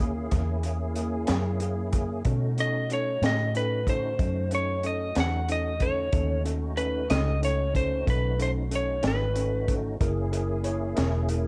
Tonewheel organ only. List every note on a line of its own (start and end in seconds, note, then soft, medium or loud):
0.00 2.23 A#3 medium
0.00 2.22 C#4 medium
0.00 2.23 E4 medium
0.00 2.23 G#4 medium
2.27 6.10 A3 medium
2.27 6.10 C#4 medium
2.27 6.10 D#4 medium
2.27 6.10 F#4 medium
6.14 9.97 A3 medium
6.14 9.96 C#4 medium
6.14 9.97 D#4 medium
6.14 9.97 F#4 medium
10.01 11.48 A#3 medium
10.01 11.48 C#4 medium
10.01 11.48 E4 medium
10.01 11.48 G#4 medium